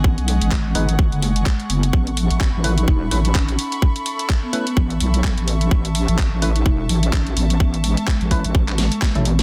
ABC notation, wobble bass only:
X:1
M:4/4
L:1/16
Q:"Swing 16ths" 1/4=127
K:Alyd
V:1 name="Wobble bass" clef=bass
G,,, B,,,2 G,,,3 G,,,2 G,,, F,,,3 z2 F,,,2 | A,,,3 A,,,2 A,,,3 E,,,2 A,,,2 A,,,2 z2 | z8 A,,,2 B,,,3 A,,,3 | A,,,3 A,,,2 A,,,3 E,,,2 A,,,2 A,,,2 A,,,2 |
A,,,3 z2 A,,,2 A,,, A,,,3 z2 A,,,3 |]